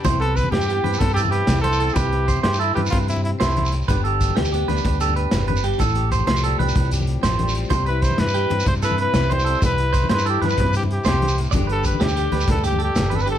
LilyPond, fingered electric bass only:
\new Staff \with { instrumentName = "Fingered electric bass" } { \clef bass \time 12/8 \key c \major \tempo 4. = 125 c,4. g,4 g,8 g,4. c,4. | c,4. g,4 g,8 g,4. c,4. | g,,4. d,4 d,8 d,4. g,,4. | a,,4. c,4 c,8 c,4. a,,4. |
c,4. g,4 g,8 g,4. c,4. | c,4. g,4 g,8 g,4. c,4. | g,,4. d,4 d,8 d,4. g,,4. | }